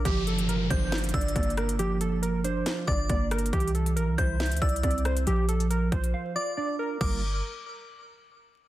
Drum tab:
CC |------------------------------------------------------------------------------------------------|------------------------------------------------------------------------------------------------|------------------------------------------------------------------------------------------------|------------------------------------------------------------------------------------------------|
HH |x-----------x-----x-----x-----------x-----------x--x--x--x------x---x---x---x---x---x-----x-----|x-----------x-----------x-----------x-----------x-----------------------x-----------x---x---x---|x---x---x---x-----x-----x-----------x-----------x--x--x--x--x---x---x---x---x---x---x-----x-----|x-----------x-----x-----x-----------x-----x-----------------------------------------------------|
SD |------------------------------------------------o-----------------------------------r-----------|------------------------------------------------o-----------------------------------r-----------|------------------------------------------------o-----------------------------------r-----------|------------------------------------------------------------------------------------------------|
BD |o-----------------------------------o-----------------------o-----------o-----------------------|------------------------------------------------------------o-----------o-----------------------|o-----------------------------------o-----------------------o-----------o-----------------------|------------------------------------o-----------------------------------------------------------|

CC |x-----------------------------------------------------------------------------------------------|
HH |------------------------------------------------------------------------------------------------|
SD |------------------------------------------------------------------------------------------------|
BD |o-----------------------------------------------------------------------------------------------|